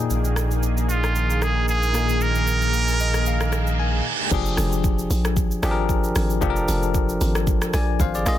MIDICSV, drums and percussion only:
0, 0, Header, 1, 2, 480
1, 0, Start_track
1, 0, Tempo, 526316
1, 95, Time_signature, 4, 2, 24, 8
1, 7646, End_track
2, 0, Start_track
2, 0, Title_t, "Drums"
2, 95, Note_on_c, 9, 82, 68
2, 186, Note_off_c, 9, 82, 0
2, 225, Note_on_c, 9, 82, 50
2, 317, Note_off_c, 9, 82, 0
2, 331, Note_on_c, 9, 37, 92
2, 337, Note_on_c, 9, 82, 85
2, 422, Note_off_c, 9, 37, 0
2, 428, Note_off_c, 9, 82, 0
2, 466, Note_on_c, 9, 82, 44
2, 558, Note_off_c, 9, 82, 0
2, 575, Note_on_c, 9, 82, 68
2, 666, Note_off_c, 9, 82, 0
2, 707, Note_on_c, 9, 82, 53
2, 798, Note_off_c, 9, 82, 0
2, 817, Note_on_c, 9, 82, 88
2, 908, Note_off_c, 9, 82, 0
2, 946, Note_on_c, 9, 37, 89
2, 947, Note_on_c, 9, 82, 56
2, 1037, Note_off_c, 9, 37, 0
2, 1038, Note_off_c, 9, 82, 0
2, 1054, Note_on_c, 9, 82, 68
2, 1145, Note_off_c, 9, 82, 0
2, 1187, Note_on_c, 9, 82, 49
2, 1278, Note_off_c, 9, 82, 0
2, 1294, Note_on_c, 9, 37, 86
2, 1295, Note_on_c, 9, 82, 75
2, 1385, Note_off_c, 9, 37, 0
2, 1386, Note_off_c, 9, 82, 0
2, 1535, Note_on_c, 9, 82, 74
2, 1626, Note_off_c, 9, 82, 0
2, 1668, Note_on_c, 9, 82, 52
2, 1759, Note_off_c, 9, 82, 0
2, 1774, Note_on_c, 9, 82, 106
2, 1775, Note_on_c, 9, 37, 87
2, 1865, Note_off_c, 9, 82, 0
2, 1867, Note_off_c, 9, 37, 0
2, 1907, Note_on_c, 9, 82, 57
2, 1998, Note_off_c, 9, 82, 0
2, 2015, Note_on_c, 9, 82, 65
2, 2106, Note_off_c, 9, 82, 0
2, 2145, Note_on_c, 9, 82, 50
2, 2236, Note_off_c, 9, 82, 0
2, 2256, Note_on_c, 9, 82, 91
2, 2347, Note_off_c, 9, 82, 0
2, 2386, Note_on_c, 9, 82, 41
2, 2477, Note_off_c, 9, 82, 0
2, 2495, Note_on_c, 9, 82, 67
2, 2587, Note_off_c, 9, 82, 0
2, 2627, Note_on_c, 9, 82, 54
2, 2718, Note_off_c, 9, 82, 0
2, 2737, Note_on_c, 9, 82, 84
2, 2828, Note_off_c, 9, 82, 0
2, 2865, Note_on_c, 9, 37, 87
2, 2866, Note_on_c, 9, 82, 55
2, 2956, Note_off_c, 9, 37, 0
2, 2957, Note_off_c, 9, 82, 0
2, 2973, Note_on_c, 9, 82, 67
2, 3064, Note_off_c, 9, 82, 0
2, 3107, Note_on_c, 9, 37, 91
2, 3107, Note_on_c, 9, 82, 53
2, 3198, Note_off_c, 9, 37, 0
2, 3198, Note_off_c, 9, 82, 0
2, 3214, Note_on_c, 9, 37, 85
2, 3215, Note_on_c, 9, 82, 75
2, 3305, Note_off_c, 9, 37, 0
2, 3306, Note_off_c, 9, 82, 0
2, 3348, Note_on_c, 9, 82, 54
2, 3439, Note_off_c, 9, 82, 0
2, 3934, Note_on_c, 9, 49, 99
2, 3934, Note_on_c, 9, 82, 71
2, 3935, Note_on_c, 9, 36, 101
2, 4025, Note_off_c, 9, 82, 0
2, 4026, Note_off_c, 9, 36, 0
2, 4026, Note_off_c, 9, 49, 0
2, 4066, Note_on_c, 9, 82, 56
2, 4157, Note_off_c, 9, 82, 0
2, 4171, Note_on_c, 9, 37, 100
2, 4177, Note_on_c, 9, 46, 59
2, 4177, Note_on_c, 9, 82, 96
2, 4263, Note_off_c, 9, 37, 0
2, 4268, Note_off_c, 9, 46, 0
2, 4268, Note_off_c, 9, 82, 0
2, 4307, Note_on_c, 9, 82, 47
2, 4398, Note_off_c, 9, 82, 0
2, 4415, Note_on_c, 9, 36, 102
2, 4416, Note_on_c, 9, 82, 74
2, 4506, Note_off_c, 9, 36, 0
2, 4507, Note_off_c, 9, 82, 0
2, 4547, Note_on_c, 9, 82, 57
2, 4638, Note_off_c, 9, 82, 0
2, 4657, Note_on_c, 9, 46, 52
2, 4657, Note_on_c, 9, 82, 92
2, 4748, Note_off_c, 9, 46, 0
2, 4748, Note_off_c, 9, 82, 0
2, 4787, Note_on_c, 9, 37, 98
2, 4787, Note_on_c, 9, 82, 60
2, 4878, Note_off_c, 9, 37, 0
2, 4879, Note_off_c, 9, 82, 0
2, 4893, Note_on_c, 9, 36, 123
2, 4894, Note_on_c, 9, 82, 74
2, 4985, Note_off_c, 9, 36, 0
2, 4985, Note_off_c, 9, 82, 0
2, 5027, Note_on_c, 9, 82, 57
2, 5118, Note_off_c, 9, 82, 0
2, 5134, Note_on_c, 9, 37, 98
2, 5135, Note_on_c, 9, 46, 48
2, 5135, Note_on_c, 9, 82, 83
2, 5225, Note_off_c, 9, 37, 0
2, 5226, Note_off_c, 9, 46, 0
2, 5226, Note_off_c, 9, 82, 0
2, 5373, Note_on_c, 9, 36, 90
2, 5374, Note_on_c, 9, 82, 78
2, 5464, Note_off_c, 9, 36, 0
2, 5465, Note_off_c, 9, 82, 0
2, 5507, Note_on_c, 9, 82, 58
2, 5598, Note_off_c, 9, 82, 0
2, 5614, Note_on_c, 9, 46, 67
2, 5614, Note_on_c, 9, 82, 109
2, 5616, Note_on_c, 9, 37, 97
2, 5706, Note_off_c, 9, 46, 0
2, 5706, Note_off_c, 9, 82, 0
2, 5707, Note_off_c, 9, 37, 0
2, 5746, Note_on_c, 9, 82, 61
2, 5838, Note_off_c, 9, 82, 0
2, 5854, Note_on_c, 9, 36, 103
2, 5854, Note_on_c, 9, 82, 73
2, 5945, Note_off_c, 9, 36, 0
2, 5945, Note_off_c, 9, 82, 0
2, 5985, Note_on_c, 9, 82, 55
2, 6076, Note_off_c, 9, 82, 0
2, 6096, Note_on_c, 9, 46, 58
2, 6096, Note_on_c, 9, 82, 98
2, 6187, Note_off_c, 9, 46, 0
2, 6187, Note_off_c, 9, 82, 0
2, 6226, Note_on_c, 9, 82, 47
2, 6317, Note_off_c, 9, 82, 0
2, 6334, Note_on_c, 9, 36, 102
2, 6334, Note_on_c, 9, 82, 75
2, 6425, Note_off_c, 9, 36, 0
2, 6425, Note_off_c, 9, 82, 0
2, 6467, Note_on_c, 9, 82, 59
2, 6558, Note_off_c, 9, 82, 0
2, 6576, Note_on_c, 9, 46, 54
2, 6576, Note_on_c, 9, 82, 93
2, 6667, Note_off_c, 9, 46, 0
2, 6667, Note_off_c, 9, 82, 0
2, 6706, Note_on_c, 9, 37, 99
2, 6707, Note_on_c, 9, 82, 62
2, 6797, Note_off_c, 9, 37, 0
2, 6798, Note_off_c, 9, 82, 0
2, 6813, Note_on_c, 9, 36, 117
2, 6814, Note_on_c, 9, 82, 72
2, 6905, Note_off_c, 9, 36, 0
2, 6905, Note_off_c, 9, 82, 0
2, 6946, Note_on_c, 9, 37, 104
2, 6947, Note_on_c, 9, 82, 56
2, 7038, Note_off_c, 9, 37, 0
2, 7038, Note_off_c, 9, 82, 0
2, 7055, Note_on_c, 9, 37, 98
2, 7056, Note_on_c, 9, 46, 48
2, 7056, Note_on_c, 9, 82, 79
2, 7146, Note_off_c, 9, 37, 0
2, 7147, Note_off_c, 9, 46, 0
2, 7147, Note_off_c, 9, 82, 0
2, 7293, Note_on_c, 9, 36, 93
2, 7295, Note_on_c, 9, 82, 83
2, 7385, Note_off_c, 9, 36, 0
2, 7386, Note_off_c, 9, 82, 0
2, 7429, Note_on_c, 9, 82, 58
2, 7520, Note_off_c, 9, 82, 0
2, 7536, Note_on_c, 9, 46, 67
2, 7536, Note_on_c, 9, 82, 116
2, 7537, Note_on_c, 9, 37, 94
2, 7627, Note_off_c, 9, 46, 0
2, 7627, Note_off_c, 9, 82, 0
2, 7628, Note_off_c, 9, 37, 0
2, 7646, End_track
0, 0, End_of_file